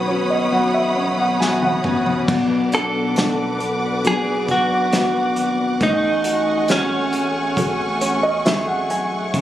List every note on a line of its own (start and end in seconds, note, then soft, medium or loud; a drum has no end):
0.00 0.48 B1 medium
0.00 2.25 B2 medium
0.00 2.27 B2 medium
0.00 1.36 D#3 soft
0.00 0.92 F#3 soft
0.00 1.84 B3 soft
0.00 0.52 F#4 soft
0.00 1.38 B4 medium
0.00 2.25 C#5 medium
0.00 2.25 F#5 medium
0.00 2.25 B5 medium
0.00 2.25 D#6 medium
0.07 0.95 C#4 soft
0.07 1.80 F#4 soft
0.07 0.28 C#5 medium
0.30 0.51 D#5 medium
0.52 1.80 B1 medium
0.52 1.40 F#4 medium
0.52 0.73 F#5 soft
0.74 1.15 E5 soft
0.96 1.84 C#4 soft
1.18 1.39 F#5 medium
1.40 1.85 F#4 medium
1.40 1.61 G#5 medium
1.40 snare soft
1.62 2.25 F#5 medium
1.62 high tom soft
1.84 2.25 A1 medium
1.84 4.48 B3 soft
1.84 2.38 C#4 medium
1.84 3.16 F#4 medium
1.84 mid tom medium
2.06 floor tom medium
2.28 3.56 B1 medium
2.28 5.81 B2 medium
2.28 5.77 B2 medium
2.28 5.78 B4 medium
2.28 5.78 D5 medium
2.28 9.30 F#5 medium
2.28 5.78 D6 medium
2.28 kick medium
2.28 crash medium
2.72 5.90 D4 soft
2.72 4.07 A4 medium
2.72 closed hi-hat medium
3.16 4.02 B3 soft
3.16 4.02 D4 soft
3.16 4.92 F#4 soft
3.16 4.02 F#4 soft
3.16 snare loud
3.16 closed hi-hat medium
3.60 4.01 B1 medium
3.60 closed hi-hat medium
4.04 5.33 B1 loud
4.04 5.80 F#3 soft
4.04 4.90 B3 soft
4.04 4.90 D4 soft
4.04 4.90 F#4 soft
4.04 4.51 G#4 medium
4.04 closed hi-hat medium
4.48 5.90 B3 soft
4.48 5.86 F#4 medium
4.48 kick medium
4.48 closed hi-hat medium
4.92 5.78 B3 soft
4.92 5.78 D4 soft
4.92 6.25 F#4 medium
4.92 5.78 F#4 soft
4.92 snare loud
4.92 closed hi-hat medium
5.36 5.78 G#1 medium
5.36 closed hi-hat medium
5.80 7.09 A1 loud
5.80 9.30 A3 soft
5.80 9.30 A3 medium
5.80 9.34 A3 medium
5.80 6.71 D#4 medium
5.80 9.30 G#5 medium
5.80 9.41 C#6 medium
5.80 kick medium
5.80 closed hi-hat medium
6.24 9.41 F#4 soft
6.24 closed hi-hat medium
6.68 8.87 C#4 medium
6.68 7.55 F#4 soft
6.68 8.45 G#4 soft
6.68 7.55 G#4 soft
6.68 7.55 A4 soft
6.68 snare medium
6.68 closed hi-hat medium
7.13 7.54 A1 medium
7.13 closed hi-hat medium
7.57 8.86 A1 loud
7.57 8.01 C#4 medium
7.57 8.43 F#4 soft
7.57 8.43 G#4 soft
7.57 8.43 A4 soft
7.57 kick medium
7.57 closed hi-hat medium
8.01 9.41 C#4 soft
8.01 8.22 C#5 medium
8.01 closed hi-hat medium
8.23 8.44 D#5 medium
8.45 9.31 F#4 soft
8.45 9.41 G#4 medium
8.45 9.31 G#4 soft
8.45 9.32 A4 soft
8.45 8.66 E5 medium
8.45 snare loud
8.45 closed hi-hat medium
8.68 8.88 F#5 medium
8.89 9.35 B1 medium
8.89 9.31 G#5 medium
8.89 closed hi-hat medium
9.34 9.41 C#2 medium
9.34 9.41 C#3 medium
9.34 9.41 G#4 medium
9.34 9.41 C#5 medium
9.34 9.41 E5 medium
9.34 kick medium
9.34 closed hi-hat medium